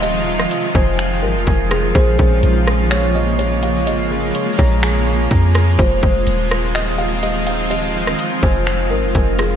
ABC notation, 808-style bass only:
X:1
M:4/4
L:1/16
Q:1/4=125
K:Bbm
V:1 name="808-style bass" clef=bass
E,,,4 z2 F,,,4 A,,, F,,, F,,,4 | B,,,2 B,,,2 B,,,12 | A,,,4 z2 B,,,6 F,,4 | F,,,2 F,,,2 E,,,12- |
E,,,4 z2 F,,,4 A,,, F,,, F,,,4 |]